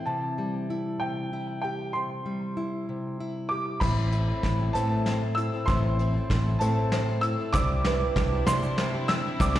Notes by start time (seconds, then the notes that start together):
Already playing: E3 C4 E4
0.06 C3 A5
0.38 G3
0.70 E4
1.00 C3 G5
1.33 E4
1.62 G4 G5
1.93 C3 C6
2.26 G3
2.57 E4
2.89 C3
3.20 E4
3.49 G4 D6
3.80 A1 A2 E3 A3 C4 E4 A4 C5 B5, kick, snare, crash
3.84 C5
4.12 A3 C4 E4 A4, closed hi-hat
4.28 A3 C4 E4 A4
4.43 A1 E4, kick, snare, closed hi-hat
4.59 A3 C4 E4 A4
4.73 A2 E3 A3 C4 E4 A4 C5 A5, closed hi-hat
5.06 A3 C4 E4 A4 C5, snare, closed hi-hat
5.22 A3 C4 E4 A4
5.35 E4 E6, closed hi-hat
5.53 A3 C4 E4 A4
5.66 A1 A2 E3 A3 C4 E4 C5 C6, kick, snare, closed hi-hat
5.70 E4 A4 C5
5.99 A3 C4 E4 A4, closed hi-hat
6.15 A3 C4 E4 A4
6.30 A1 E4, kick, snare, closed hi-hat
6.46 A3 C4 E4 A4
6.59 A2 E3 A3 C4 C5 A5, closed hi-hat
6.63 C4 E4 A4
6.92 A3 C4 E4 A4 C5, snare, closed hi-hat
7.09 A3 C4 E4 A4
7.21 E4 E6, closed hi-hat
7.39 A3 C4 E4 A4
7.53 C2 C3 G3 C4 D4 E4 C5 E5 D6, kick, snare, closed hi-hat, shaker
7.57 E4 G4
7.85 G3 D4 E4 G4 B4 C5 E5, snare, closed hi-hat
8.02 D4 E4 G4
8.16 C2 G3 D4 C5 E5, kick, snare, closed hi-hat
8.32 D4 E4 G4
8.47 C3 G3 D4 E4 G4 C5 E5 C6, snare, closed hi-hat, shaker
8.63 shaker
8.78 G3 D4 E4 G4 C5 E5, snare, closed hi-hat
8.93 D4 E4 G4
9.08 G3 D4 C5 E5 E6, snare, closed hi-hat
9.24 D4 E4 G4
9.40 C2 C3 G3 D4 E4 G4 C5 E5 D6, kick, snare, shaker
9.55 snare